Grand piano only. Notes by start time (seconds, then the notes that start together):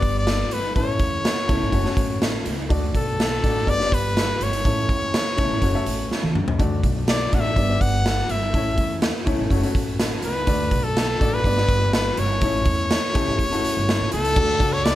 Already playing: G3 B3 D4 B4
0.75 A3 C#4 E4 B4
0.83 C#5
1.47 A3 C#4 E4 C#5
1.72 A3 C#4 F#4 C#5
1.84 A3 C#4 F#4 C#5
2.69 A3 D4 F#4 D5
3.42 A3 D4 F#4 D5
3.66 B3 D4 G4 D5
3.78 B3 D4 G4 C#5
3.86 D5
4.64 A3 C#4 E4 C#5
5.37 A3 C#4 E4 C#5
5.62 A3 C#4 F#4 C#5
5.73 A3 C#4 F#4 E5
6.58 A3 D4 F#4 D5
7.32 A3 D4 F#4 D5
7.57 B3 D4 G4 D5
7.68 B3 D4 G4 D5
8.53 A3 C#4 E4 C#5
9.25 A3 C#4 E4 C#5
9.51 A3 C#4 F#4 C#5
9.62 A3 C#4 F#4 C#5
10.46 A3 D4 F#4 D5
11.20 A3 D4 F#4 D5
11.45 B3 D4 G4 D5
11.57 B3 D4 G4 D5
12.42 A3 C#4 E4 C#5
13.14 A3 C#4 E4 G4
13.51 A3 C#4 E4 F#4
14.36 D4 F#4 A4
14.59 D4 F#4 A4